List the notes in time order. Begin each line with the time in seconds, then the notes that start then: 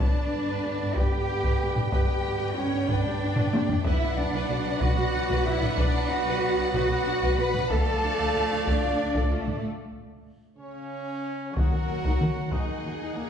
Already playing: A5
0.00 D3 B3 D4 B4 D5, taiko
0.32 G2 D4
0.48 G2 B4
0.64 G2 G4
0.80 G2 D4
0.94 G2 G4 B4 G5, taiko
1.13 G2 G4
1.29 G2 D4
1.44 G2 B4, taiko
1.60 G2 G4
1.76 G2 D4, taiko low-mid
1.91 G2 G4 B4 G5, taiko
2.23 G2 D4
2.39 G2 B4
2.55 G2 C#4 G4 C#5
2.72 G2 D4
2.86 G2 D4 B4 D5, taiko
3.04 G2 G4
3.21 G2 D4
3.36 G2 B4, taiko low-mid
3.52 G2 G4, taiko high
3.68 G2 D4, taiko low
3.82 B1 B3 E4 B4 D5 E5, taiko
3.86 F#3 B4 F#5
4.16 B1 D4 D5
4.32 B1 B4
4.49 B1 F#4
4.64 B1 D4
4.79 B1 F#4 B4 F#5, taiko
4.96 B1 F#4
5.12 B1 D4
5.28 B1 B4, taiko
5.44 B1 E4 F#4 E5
5.60 B1 D4, taiko low-mid
5.75 B1 D4 D5, taiko
5.79 B4
6.09 B1 D4 F#4 F#5
6.24 B1 B4
6.40 B1 F#4
6.57 B1 D4
6.73 B1 F#4 B4 F#5, taiko
6.89 B1 F#4
7.05 B1 D4
7.21 B1 B4, taiko
7.37 B1 F#4 B4 B5
7.54 B1 D4, taiko low-mid
7.68 D2 F3 A3 A4 D5 F5 A5, taiko
8.03 D2 D4
8.18 D2 A4
8.35 D2 F4
8.51 D2 D4
8.66 D2 D4 A4 D5, taiko
8.83 D2 F4
8.98 D2 D4
9.14 D2 A4, taiko
9.30 D2 A3 F4 A4
9.47 D2 D4, taiko low-mid
10.57 C#3 C#4 C#5
11.53 D#2 D#3 F#3 D#4 F#4 A#4 F#5, taiko
11.72 D#2 A#4
11.87 D#2 F#4
12.04 D#2 D#4, taiko
12.19 D#2 A#4, taiko mid
12.36 D#2 F#4
12.51 D#2 D#3 D#4 G#4 D#5, taiko
12.84 D#2 F#4
13.00 D#2 D#4
13.15 D#2 A#2 A#3 A#4